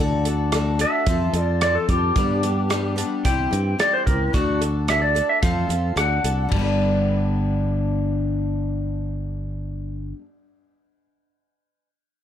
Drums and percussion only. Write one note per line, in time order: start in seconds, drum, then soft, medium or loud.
0.25 closed hi-hat medium
0.52 cross-stick loud
0.52 closed hi-hat medium
0.79 closed hi-hat medium
1.07 kick medium
1.07 closed hi-hat medium
1.34 closed hi-hat medium
1.61 cross-stick loud
1.61 closed hi-hat medium
1.89 kick medium
1.89 closed hi-hat medium
2.16 kick loud
2.16 closed hi-hat medium
2.43 closed hi-hat medium
2.70 cross-stick loud
2.70 closed hi-hat medium
2.98 closed hi-hat medium
3.25 kick medium
3.25 closed hi-hat medium
3.53 closed hi-hat medium
3.79 cross-stick medium
3.79 closed hi-hat medium
4.07 kick medium
4.07 closed hi-hat medium
4.34 kick loud
4.34 closed hi-hat medium
4.62 closed hi-hat soft
4.88 cross-stick medium
4.88 closed hi-hat medium
5.16 closed hi-hat soft
5.43 kick medium
5.43 closed hi-hat medium
5.70 closed hi-hat soft
5.97 cross-stick loud
5.97 closed hi-hat medium
6.24 closed hi-hat medium
6.52 kick medium
6.52 ride medium